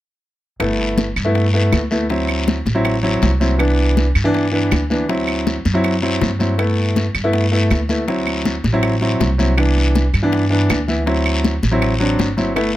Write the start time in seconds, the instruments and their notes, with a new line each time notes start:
0.60 upright bass G1, grand piano A3 B3 E4, high bongo, high conga, long guiro, claves
0.79 high conga
0.97 high bongo, high conga, short guiro
1.16 upright bass G2, short guiro, claves
1.25 grand piano A3 B3 E4
1.35 high bongo, high conga, long guiro
1.54 grand piano A3 B3 E4, high conga
1.72 upright bass D2, high bongo, low bongo, high conga, short guiro, claves
1.91 grand piano A3 B3 E4, high conga, short guiro
2.10 grand piano F#3 C4 E4, high bongo, high conga, long guiro
2.29 high bongo, high conga, claves
2.48 high bongo, high conga, short guiro
2.66 upright bass A1, high bongo, high conga, short guiro
2.75 grand piano F#3 C4 E4
2.85 high bongo, high conga, long guiro, claves
3.03 grand piano F#3 C4 E4, high bongo, high conga
3.22 upright bass C2, high bongo, low bongo, high conga, short guiro
3.40 grand piano F#3 C4 E4, high conga, short guiro
3.58 grand piano E3 B3 D4, high bongo, high conga, long guiro, claves
3.79 high conga
3.97 high bongo, high conga, short guiro
4.15 upright bass G2, short guiro, claves
4.24 grand piano E3 B3 D4
4.34 high bongo, high conga, long guiro
4.52 grand piano E3 B3 D4, high conga
4.71 upright bass D2, high bongo, low bongo, high conga, short guiro, claves
4.90 grand piano E3 B3 D4, high conga, short guiro
5.09 grand piano F#3 C4 E4, high bongo, high conga, long guiro
5.28 high bongo, high conga, claves
5.47 high bongo, high conga, short guiro
5.65 upright bass F#2, high bongo, high conga, short guiro
5.74 grand piano F#3 C4 E4
5.84 high bongo, high conga, long guiro, claves
6.02 grand piano F#3 C4 E4, high bongo, high conga
6.21 upright bass G2, high bongo, low bongo, high conga, short guiro
6.39 grand piano F#3 C4 E4, high conga, short guiro
6.58 grand piano A3 B3 E4, high bongo, high conga, long guiro, claves
6.78 high conga
6.96 high bongo, high conga, short guiro
7.14 upright bass G2, short guiro, claves
7.24 grand piano A3 B3 E4
7.33 high bongo, high conga, long guiro
7.52 grand piano A3 B3 E4, high conga
7.71 upright bass D2, high bongo, low bongo, high conga, short guiro, claves
7.89 grand piano A3 B3 E4, high conga, short guiro
8.07 grand piano F#3 C4 E4, high bongo, high conga, long guiro
8.27 high bongo, high conga, claves
8.45 high bongo, high conga, short guiro
8.64 upright bass A1, high bongo, high conga, short guiro
8.73 grand piano F#3 C4 E4
8.83 high bongo, high conga, long guiro, claves
9.01 grand piano F#3 C4 E4, high bongo, high conga
9.20 upright bass C2, high bongo, low bongo, high conga, short guiro
9.38 grand piano F#3 C4 E4, high conga, short guiro
9.57 grand piano E3 B3 D4, high bongo, high conga, long guiro, claves
9.77 high conga
9.95 high bongo, high conga, short guiro
10.14 upright bass G2, short guiro, claves
10.22 grand piano E3 B3 D4
10.32 high bongo, high conga, long guiro
10.50 grand piano E3 B3 D4, high conga
10.70 upright bass D2, high bongo, low bongo, high conga, short guiro, claves
10.88 grand piano E3 B3 E4, high conga, short guiro
11.06 grand piano F#3 C4 E4, high bongo, high conga, long guiro
11.26 high bongo, high conga, claves
11.44 high bongo, high conga, short guiro
11.63 upright bass A1, high bongo, high conga, short guiro
11.71 grand piano F#3 C4 E4
11.82 high bongo, high conga, long guiro, claves
11.99 grand piano F#3 C4 D4, high bongo, high conga
12.19 upright bass G1, high bongo, low bongo, high conga, short guiro
12.37 grand piano F#3 C4 E4, high conga, short guiro
12.56 grand piano A3 B3 E4, high bongo, high conga, long guiro, claves